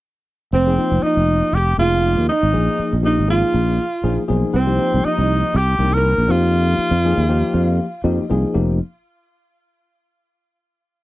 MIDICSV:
0, 0, Header, 1, 6, 480
1, 0, Start_track
1, 0, Key_signature, -4, "minor"
1, 0, Tempo, 502092
1, 504, Time_signature, 4, 2, 24, 8
1, 10549, End_track
2, 0, Start_track
2, 0, Title_t, "Hollow-body jazz guitar"
2, 0, Program_c, 0, 26
2, 528, Note_on_c, 0, 60, 65
2, 963, Note_off_c, 0, 60, 0
2, 1018, Note_on_c, 0, 63, 63
2, 1501, Note_off_c, 0, 63, 0
2, 1501, Note_on_c, 0, 67, 73
2, 1721, Note_off_c, 0, 67, 0
2, 1737, Note_on_c, 0, 65, 68
2, 2166, Note_off_c, 0, 65, 0
2, 2217, Note_on_c, 0, 63, 67
2, 2879, Note_off_c, 0, 63, 0
2, 2938, Note_on_c, 0, 63, 61
2, 3143, Note_off_c, 0, 63, 0
2, 3172, Note_on_c, 0, 65, 67
2, 4075, Note_off_c, 0, 65, 0
2, 4360, Note_on_c, 0, 60, 65
2, 4794, Note_off_c, 0, 60, 0
2, 4855, Note_on_c, 0, 63, 64
2, 5332, Note_off_c, 0, 63, 0
2, 5332, Note_on_c, 0, 67, 75
2, 5711, Note_off_c, 0, 67, 0
2, 5711, Note_on_c, 0, 70, 75
2, 6050, Note_off_c, 0, 70, 0
2, 6050, Note_on_c, 0, 65, 61
2, 7712, Note_off_c, 0, 65, 0
2, 10549, End_track
3, 0, Start_track
3, 0, Title_t, "Tenor saxophone"
3, 0, Program_c, 1, 66
3, 511, Note_on_c, 1, 60, 82
3, 983, Note_on_c, 1, 63, 85
3, 998, Note_off_c, 1, 60, 0
3, 1476, Note_on_c, 1, 67, 89
3, 1490, Note_off_c, 1, 63, 0
3, 1709, Note_off_c, 1, 67, 0
3, 1714, Note_on_c, 1, 65, 84
3, 2154, Note_off_c, 1, 65, 0
3, 2191, Note_on_c, 1, 63, 87
3, 2866, Note_off_c, 1, 63, 0
3, 2916, Note_on_c, 1, 63, 81
3, 3131, Note_off_c, 1, 63, 0
3, 3158, Note_on_c, 1, 65, 79
3, 4068, Note_off_c, 1, 65, 0
3, 4335, Note_on_c, 1, 60, 76
3, 4831, Note_on_c, 1, 63, 89
3, 4845, Note_off_c, 1, 60, 0
3, 5316, Note_on_c, 1, 67, 84
3, 5330, Note_off_c, 1, 63, 0
3, 5674, Note_on_c, 1, 70, 92
3, 5688, Note_off_c, 1, 67, 0
3, 6033, Note_on_c, 1, 65, 89
3, 6048, Note_off_c, 1, 70, 0
3, 7704, Note_off_c, 1, 65, 0
3, 10549, End_track
4, 0, Start_track
4, 0, Title_t, "Tine electric piano"
4, 0, Program_c, 2, 4
4, 632, Note_on_c, 2, 53, 68
4, 638, Note_on_c, 2, 58, 60
4, 640, Note_on_c, 2, 63, 61
4, 642, Note_on_c, 2, 68, 76
4, 713, Note_off_c, 2, 53, 0
4, 716, Note_off_c, 2, 58, 0
4, 717, Note_off_c, 2, 63, 0
4, 718, Note_off_c, 2, 68, 0
4, 743, Note_on_c, 2, 53, 64
4, 747, Note_on_c, 2, 58, 57
4, 750, Note_on_c, 2, 63, 56
4, 752, Note_on_c, 2, 65, 67
4, 1448, Note_off_c, 2, 53, 0
4, 1450, Note_off_c, 2, 58, 0
4, 1451, Note_off_c, 2, 63, 0
4, 1453, Note_off_c, 2, 65, 0
4, 1695, Note_on_c, 2, 53, 58
4, 1698, Note_on_c, 2, 58, 52
4, 1703, Note_on_c, 2, 63, 48
4, 1708, Note_on_c, 2, 68, 64
4, 2230, Note_off_c, 2, 53, 0
4, 2231, Note_off_c, 2, 58, 0
4, 2234, Note_off_c, 2, 63, 0
4, 2237, Note_off_c, 2, 68, 0
4, 2413, Note_on_c, 2, 53, 68
4, 2413, Note_on_c, 2, 58, 64
4, 2419, Note_on_c, 2, 63, 64
4, 2424, Note_on_c, 2, 68, 77
4, 2779, Note_off_c, 2, 53, 0
4, 2779, Note_off_c, 2, 58, 0
4, 2782, Note_off_c, 2, 63, 0
4, 2785, Note_off_c, 2, 68, 0
4, 2888, Note_on_c, 2, 53, 61
4, 2897, Note_on_c, 2, 58, 57
4, 2897, Note_on_c, 2, 67, 68
4, 2900, Note_on_c, 2, 63, 60
4, 3076, Note_off_c, 2, 53, 0
4, 3080, Note_off_c, 2, 58, 0
4, 3080, Note_off_c, 2, 67, 0
4, 3081, Note_off_c, 2, 63, 0
4, 3129, Note_on_c, 2, 53, 65
4, 3134, Note_on_c, 2, 58, 61
4, 3136, Note_on_c, 2, 63, 62
4, 3138, Note_on_c, 2, 68, 72
4, 3665, Note_off_c, 2, 53, 0
4, 3668, Note_off_c, 2, 58, 0
4, 3669, Note_off_c, 2, 63, 0
4, 3670, Note_off_c, 2, 68, 0
4, 3855, Note_on_c, 2, 53, 79
4, 3857, Note_on_c, 2, 58, 71
4, 3859, Note_on_c, 2, 63, 71
4, 3863, Note_on_c, 2, 68, 83
4, 4038, Note_off_c, 2, 53, 0
4, 4039, Note_off_c, 2, 58, 0
4, 4040, Note_off_c, 2, 63, 0
4, 4042, Note_off_c, 2, 68, 0
4, 4088, Note_on_c, 2, 53, 76
4, 4092, Note_on_c, 2, 58, 73
4, 4094, Note_on_c, 2, 68, 83
4, 4096, Note_on_c, 2, 63, 70
4, 4331, Note_off_c, 2, 53, 0
4, 4334, Note_off_c, 2, 58, 0
4, 4335, Note_off_c, 2, 68, 0
4, 4336, Note_off_c, 2, 63, 0
4, 4454, Note_on_c, 2, 53, 69
4, 4460, Note_on_c, 2, 58, 62
4, 4461, Note_on_c, 2, 63, 62
4, 4464, Note_on_c, 2, 67, 73
4, 4540, Note_off_c, 2, 53, 0
4, 4543, Note_off_c, 2, 58, 0
4, 4543, Note_off_c, 2, 63, 0
4, 4545, Note_off_c, 2, 67, 0
4, 4568, Note_on_c, 2, 53, 70
4, 4573, Note_on_c, 2, 58, 61
4, 4575, Note_on_c, 2, 63, 58
4, 4581, Note_on_c, 2, 67, 76
4, 5276, Note_off_c, 2, 53, 0
4, 5278, Note_off_c, 2, 58, 0
4, 5279, Note_off_c, 2, 63, 0
4, 5282, Note_off_c, 2, 67, 0
4, 5532, Note_on_c, 2, 53, 53
4, 5535, Note_on_c, 2, 58, 50
4, 5538, Note_on_c, 2, 63, 51
4, 5543, Note_on_c, 2, 70, 64
4, 5996, Note_off_c, 2, 53, 0
4, 6002, Note_off_c, 2, 63, 0
4, 6003, Note_off_c, 2, 58, 0
4, 6008, Note_on_c, 2, 53, 75
4, 6014, Note_on_c, 2, 58, 63
4, 6014, Note_on_c, 2, 63, 64
4, 6018, Note_off_c, 2, 70, 0
4, 6021, Note_on_c, 2, 67, 73
4, 6596, Note_off_c, 2, 53, 0
4, 6599, Note_off_c, 2, 58, 0
4, 6599, Note_off_c, 2, 63, 0
4, 6603, Note_off_c, 2, 67, 0
4, 6735, Note_on_c, 2, 53, 77
4, 6740, Note_on_c, 2, 58, 66
4, 6742, Note_on_c, 2, 63, 67
4, 6748, Note_on_c, 2, 68, 85
4, 6917, Note_off_c, 2, 53, 0
4, 6919, Note_off_c, 2, 58, 0
4, 6920, Note_off_c, 2, 63, 0
4, 6923, Note_off_c, 2, 68, 0
4, 6967, Note_on_c, 2, 53, 81
4, 6970, Note_on_c, 2, 79, 59
4, 6971, Note_on_c, 2, 58, 65
4, 6973, Note_on_c, 2, 63, 71
4, 6978, Note_on_c, 2, 67, 91
4, 7195, Note_off_c, 2, 79, 0
4, 7211, Note_on_c, 2, 77, 68
4, 7503, Note_off_c, 2, 53, 0
4, 7505, Note_off_c, 2, 58, 0
4, 7506, Note_off_c, 2, 63, 0
4, 7509, Note_off_c, 2, 67, 0
4, 7659, Note_off_c, 2, 77, 0
4, 7684, Note_on_c, 2, 53, 79
4, 7688, Note_on_c, 2, 58, 75
4, 7690, Note_on_c, 2, 75, 57
4, 7693, Note_on_c, 2, 63, 72
4, 7695, Note_on_c, 2, 67, 80
4, 7871, Note_off_c, 2, 53, 0
4, 7874, Note_off_c, 2, 58, 0
4, 7876, Note_off_c, 2, 63, 0
4, 7877, Note_off_c, 2, 67, 0
4, 7928, Note_on_c, 2, 53, 75
4, 7930, Note_on_c, 2, 58, 66
4, 7938, Note_on_c, 2, 63, 69
4, 7941, Note_on_c, 2, 68, 85
4, 8139, Note_off_c, 2, 75, 0
4, 8155, Note_off_c, 2, 63, 0
4, 8157, Note_off_c, 2, 53, 0
4, 8157, Note_off_c, 2, 58, 0
4, 8167, Note_on_c, 2, 63, 67
4, 8168, Note_on_c, 2, 53, 67
4, 8168, Note_on_c, 2, 58, 69
4, 8168, Note_on_c, 2, 67, 80
4, 8178, Note_off_c, 2, 68, 0
4, 8394, Note_off_c, 2, 63, 0
4, 8394, Note_off_c, 2, 67, 0
4, 8395, Note_off_c, 2, 53, 0
4, 8395, Note_off_c, 2, 58, 0
4, 10549, End_track
5, 0, Start_track
5, 0, Title_t, "Fretless electric bass"
5, 0, Program_c, 3, 35
5, 504, Note_on_c, 3, 29, 82
5, 731, Note_off_c, 3, 29, 0
5, 873, Note_on_c, 3, 29, 71
5, 977, Note_off_c, 3, 29, 0
5, 1116, Note_on_c, 3, 29, 73
5, 1343, Note_off_c, 3, 29, 0
5, 1459, Note_on_c, 3, 29, 82
5, 1688, Note_off_c, 3, 29, 0
5, 1704, Note_on_c, 3, 29, 81
5, 2055, Note_off_c, 3, 29, 0
5, 2076, Note_on_c, 3, 39, 69
5, 2177, Note_off_c, 3, 39, 0
5, 2320, Note_on_c, 3, 32, 71
5, 2419, Note_off_c, 3, 32, 0
5, 2430, Note_on_c, 3, 34, 72
5, 2550, Note_off_c, 3, 34, 0
5, 2799, Note_on_c, 3, 34, 69
5, 3022, Note_off_c, 3, 34, 0
5, 3043, Note_on_c, 3, 32, 70
5, 3264, Note_off_c, 3, 32, 0
5, 3384, Note_on_c, 3, 34, 76
5, 3608, Note_off_c, 3, 34, 0
5, 3858, Note_on_c, 3, 34, 77
5, 3982, Note_off_c, 3, 34, 0
5, 4107, Note_on_c, 3, 35, 79
5, 4227, Note_off_c, 3, 35, 0
5, 4338, Note_on_c, 3, 36, 84
5, 4564, Note_off_c, 3, 36, 0
5, 4721, Note_on_c, 3, 36, 71
5, 4817, Note_off_c, 3, 36, 0
5, 4954, Note_on_c, 3, 36, 71
5, 5178, Note_off_c, 3, 36, 0
5, 5299, Note_on_c, 3, 36, 86
5, 5524, Note_off_c, 3, 36, 0
5, 5530, Note_on_c, 3, 36, 86
5, 5884, Note_off_c, 3, 36, 0
5, 5908, Note_on_c, 3, 34, 75
5, 6000, Note_off_c, 3, 34, 0
5, 6006, Note_on_c, 3, 41, 79
5, 6464, Note_off_c, 3, 41, 0
5, 6606, Note_on_c, 3, 41, 73
5, 6843, Note_off_c, 3, 41, 0
5, 6857, Note_on_c, 3, 39, 63
5, 7089, Note_off_c, 3, 39, 0
5, 7208, Note_on_c, 3, 41, 77
5, 7438, Note_off_c, 3, 41, 0
5, 7686, Note_on_c, 3, 41, 78
5, 7815, Note_off_c, 3, 41, 0
5, 7940, Note_on_c, 3, 36, 71
5, 8063, Note_off_c, 3, 36, 0
5, 8175, Note_on_c, 3, 29, 78
5, 8398, Note_off_c, 3, 29, 0
5, 10549, End_track
6, 0, Start_track
6, 0, Title_t, "Muted fretless electric bass strokes"
6, 2668, Note_on_c, 9, 29, 33
6, 2764, Note_off_c, 9, 29, 0
6, 6485, Note_on_c, 9, 29, 31
6, 6581, Note_off_c, 9, 29, 0
6, 10549, End_track
0, 0, End_of_file